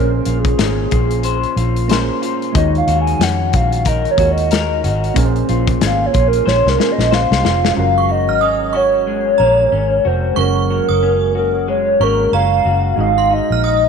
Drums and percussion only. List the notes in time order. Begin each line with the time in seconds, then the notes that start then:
0.25 closed hi-hat
0.45 kick, closed hi-hat
0.59 snare, closed hi-hat
0.91 kick, closed hi-hat
1.11 closed hi-hat
1.23 closed hi-hat
1.44 closed hi-hat
1.57 closed hi-hat
1.76 closed hi-hat
1.89 snare, closed hi-hat
2.23 closed hi-hat
2.42 closed hi-hat
2.55 kick, closed hi-hat
2.75 closed hi-hat
2.88 closed hi-hat
3.07 closed hi-hat
3.21 snare, closed hi-hat
3.53 kick, closed hi-hat
3.72 closed hi-hat
3.85 kick, closed hi-hat
4.05 closed hi-hat
4.18 kick, closed hi-hat
4.38 closed hi-hat
4.51 snare, closed hi-hat
4.84 closed hi-hat
5.04 closed hi-hat
5.16 kick, closed hi-hat
5.36 closed hi-hat
5.49 closed hi-hat
5.67 kick, closed hi-hat
5.81 snare, closed hi-hat
6.14 kick, closed hi-hat
6.33 closed hi-hat
6.47 snare
6.67 snare
6.80 snare
6.99 snare
7.12 snare
7.32 snare
7.45 snare
7.65 snare